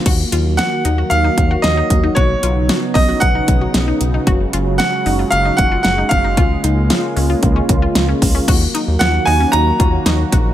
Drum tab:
CC |x-------|--------|--------|--------|
HH |xxxxxxxx|xxxoxxxx|xxxoxxxx|xxxoxxxo|
SD |--o---o-|--o---o-|--o---o-|--o---o-|
BD |o----o-o|o--ooo--|o----o-o|o---oo-o|

CC |x-------|
HH |xxxoxxxx|
SD |--o---o-|
BD |o----o-o|